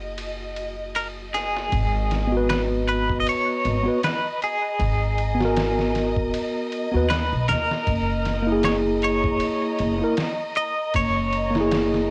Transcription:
0.00 1.69 F#1 medium
0.00 1.66 A#3 medium
0.00 1.68 E4 medium
0.00 1.74 F#4 medium
0.00 1.71 G#4 medium
0.00 1.71 D#5 medium
0.18 ride medium
0.56 ride medium
0.95 1.06 A#4 medium
0.95 ride medium
1.34 2.49 G#4 medium
1.34 snare soft
1.34 ride medium
1.56 snare soft
1.72 3.23 G#1 loud
1.72 12.10 D#5 medium
1.72 12.10 A#5 medium
1.72 kick loud
1.72 ride medium
2.11 snare soft
2.11 ride medium
2.27 3.79 B3 loud
2.32 3.82 F#4 medium
2.37 3.84 B4 loud
2.49 2.60 B4 loud
2.49 snare loud
2.49 ride medium
2.88 3.20 B4 medium
2.88 ride medium
3.09 kick medium
3.20 3.26 D#5 medium
3.27 4.00 C#5 loud
3.27 ride medium
3.65 3.84 G#1 loud
3.65 ride medium
3.83 3.97 B3 loud
3.83 3.98 F#4 medium
3.88 4.00 B4 loud
4.03 4.39 B4 loud
4.03 snare loud
4.03 ride medium
4.42 6.31 G#4 medium
4.42 ride medium
4.79 6.30 G#1 loud
4.79 kick loud
4.79 ride medium
5.18 ride medium
5.35 6.87 B3 loud
5.40 6.90 F#4 medium
5.40 snare soft
5.45 6.92 A#4 loud
5.57 snare loud
5.57 ride medium
5.79 snare soft
5.95 snare soft
5.95 ride medium
6.17 kick medium
6.34 ride medium
6.72 ride medium
6.92 7.32 D#2 medium
6.92 7.05 B3 medium
6.92 7.07 F#4 medium
6.97 7.08 B4 loud
7.10 7.48 B4 medium
7.10 snare loud
7.10 ride medium
7.33 7.51 B1 loud
7.48 7.68 D#2 medium
7.48 8.65 A#4 loud
7.48 snare medium
7.48 ride medium
7.71 snare soft
7.87 9.38 F#1 loud
7.87 kick loud
7.87 ride medium
8.25 snare soft
8.25 ride medium
8.42 9.94 A#3 loud
8.47 9.97 E4 medium
8.52 9.99 G#4 loud
8.63 8.75 C#5 loud
8.63 snare loud
8.63 ride medium
9.02 10.15 C#5 loud
9.02 ride medium
9.24 kick medium
9.40 ride medium
9.79 9.99 F#1 loud
9.79 ride medium
9.99 10.13 A#3 medium
9.99 10.14 E4 medium
10.04 10.15 A#4 loud
10.17 snare loud
10.17 ride medium
10.55 10.93 D#5 loud
10.55 ride medium
10.94 12.10 F#1 medium
10.94 12.10 C#5 loud
10.94 kick loud
10.94 ride medium
11.33 ride medium
11.51 12.10 A#3 loud
11.55 12.10 E4 medium
11.55 snare soft
11.61 12.10 G#4 loud
11.71 snare loud
11.71 ride medium
11.94 snare soft

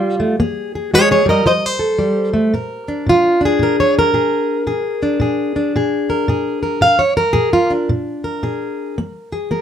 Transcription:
0.00 0.19 G3 medium
0.00 0.39 F4 loud
0.20 0.39 A3 medium
0.40 0.89 A#3 medium
0.40 0.73 G#4 medium
0.75 0.93 G#4 medium
0.94 1.25 G#3 medium
0.94 1.10 G#4 medium
0.94 1.10 C#5 loud
1.11 1.29 G#4 medium
1.11 1.29 C#5 medium
1.26 1.45 G3 medium
1.26 1.46 A#4 medium
1.30 1.46 D#5 medium
1.46 1.95 F3 medium
1.46 1.52 C5 medium
1.46 1.66 D#5 loud
1.66 2.54 C5 loud
1.79 2.50 A4 medium
1.99 2.33 G3 medium
2.34 2.53 A3 medium
2.54 3.03 A#2 medium
2.54 3.62 A#4 soft
2.88 3.41 D4 soft
3.06 3.56 A#2 medium
3.06 3.44 F4 loud
3.41 4.70 D4 soft
3.45 4.13 G#4 medium
3.59 4.10 A#2 medium
3.59 3.79 A#4 medium
3.80 3.97 C#5 medium
3.99 5.58 A#4 medium
4.14 4.64 A#2 medium
4.14 4.67 G#4 soft
4.67 5.17 A#2 medium
4.67 5.21 G#4 medium
5.03 5.56 D4 soft
5.20 5.70 A#2 medium
5.20 5.76 G#4 soft
5.56 7.02 D4 soft
5.76 6.25 A#2 medium
5.76 6.29 G#4 medium
6.10 6.62 A#4 soft
6.28 6.78 A#2 medium
6.28 6.84 G#4 medium
6.63 6.98 A#4 soft
6.81 7.32 A#2 medium
6.81 7.00 F5 loud
6.99 7.17 C#5 medium
7.17 7.89 A#4 medium
7.33 7.85 A#2 medium
7.33 7.53 G#4 medium
7.53 7.72 F4 medium
7.70 8.95 D4 soft
7.89 8.40 A#2 medium
8.24 9.35 A#4 soft
8.43 8.93 A#2 medium
8.43 8.95 G#4 soft
8.98 9.48 A#3 medium
9.32 9.62 G#4 soft
9.51 9.62 A#3 medium
9.51 9.62 A#4 soft

